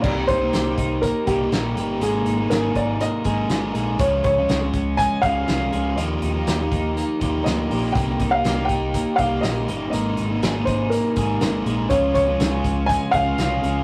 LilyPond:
<<
  \new Staff \with { instrumentName = "Upright piano" } { \time 4/4 \key c \minor \tempo 4 = 121 d''8 c''4. bes'8 g'4. | aes'4 bes'8 d''8 ees''4. r8 | des''8 des''4. aes''8 f''4. | ees''2 r4 ees''4 |
g''8. f''8. g''4 f''8 ees''4 | ees''4. c''8 bes'4. r8 | des''8 des''4. aes''8 f''4. | }
  \new Staff \with { instrumentName = "Clean electric guitar" } { \time 4/4 \key c \minor bes8 ees'8 g'8 ees'8 bes8 g'8 bes8 g'8 | bes8 ees'8 aes'8 ees'8 bes8 aes'8 bes8 aes'8 | f8 des'8 aes'8 des'8 aes8 aes'8 aes8 aes'8 | f8 ees'8 g'8 ees'8 bes8 g'8 bes8 g'8 |
bes8 ees'8 g'8 ees'8 bes8 g'8 bes8 g'8 | bes8 ees'8 aes'8 ees'8 bes8 aes'8 bes8 aes'8 | f8 des'8 aes'8 des'8 aes8 aes'8 aes8 aes'8 | }
  \new Staff \with { instrumentName = "Overdriven electric guitar" } { \time 4/4 \key c \minor <c g bes ees' g'>8. <bes ees' g'>8 <bes ees' g'>4~ <bes ees' g'>16 <g bes ees' g'>8 <g bes ees' g'>8 <g bes ees' g'>8 | <aes bes ees' aes'>8. <bes ees' aes'>8 <bes ees' aes'>4~ <bes ees' aes'>16 <aes bes ees' aes'>8 <aes bes ees' aes'>8 <aes bes ees' aes'>8 | <des f aes des' aes'>8. <aes des' aes'>8 <aes des' aes'>4~ <aes des' aes'>16 <f aes des' aes'>8 <f aes des' aes'>8 <f aes des' aes'>8 | <ees f bes ees' g'>8. <bes ees' g'>8 <bes ees' g'>4~ <bes ees' g'>16 <f bes ees' g'>8 <f bes ees' g'>8 <f bes ees' g'>8 |
<c g bes ees' g'>8. <bes ees' g'>8 <bes ees' g'>4~ <bes ees' g'>16 <g bes ees' g'>8 <g bes ees' g'>8 <g bes ees' g'>8 | <aes bes ees' aes'>8. <bes ees' aes'>8 <bes ees' aes'>4~ <bes ees' aes'>16 <aes bes ees' aes'>8 <aes bes ees' aes'>8 <aes bes ees' aes'>8 | <des aes des' f'>8. <aes des' f'>8 <aes des' f'>4~ <aes des' f'>16 <des aes des' f'>8 <des aes des' f'>8 <des aes des' f'>8 | }
  \new Staff \with { instrumentName = "Fingered electric bass" } { \clef bass \time 4/4 \key c \minor c,8 c,8 c,8 c,8. r16 c,8 bes,,8 g,,8 | aes,,8 aes,,8 aes,,8 aes,,8. r16 aes,,8 g,,8 bes,,8 | des,8 des,8 des,8 des,8. r16 des,8 c,8 des,8 | ees,8 ees,8 ees,8 ees,8. r16 ees,8 d,8 bes,,8 |
c,8 c,8 c,8 c,8. r16 c,8 bes,,8 g,,8 | aes,,8 aes,,8 aes,,8 aes,,8. r16 aes,,8 g,,8 bes,,8 | des,8 des,8 des,8 des,8. r16 des,8 c,8 des,8 | }
  \new DrumStaff \with { instrumentName = "Drums" } \drummode { \time 4/4 <cymc bd>8 <hh bd>8 <hh sn>8 <hh bd>8 <hh bd>8 <hh bd>8 <hh sn>8 hh8 | hh8 hh8 <hh sn>8 <hh bd>8 hh8 <hh bd>8 <hh sn>8 hh8 | <hh bd>8 <hh bd>8 <hh sn>8 <hh bd>8 <hh bd>8 <hh bd>8 <hh sn>8 hh8 | hh8 hh8 <hh sn>8 <hh bd>8 hh8 <hh bd>8 <hh sn>8 hho8 |
<hh bd>8 <hh bd>8 <hh sn>8 <hh bd>8 <hh bd>8 <hh bd>8 <hh sn>8 hh8 | hh8 hh8 <hh sn>8 <hh bd>8 hh8 <hh bd>8 <hh sn>8 hh8 | <hh bd>8 <hh bd>8 <hh sn>8 <hh bd>8 <hh bd>8 <hh bd>8 <hh sn>8 hh8 | }
>>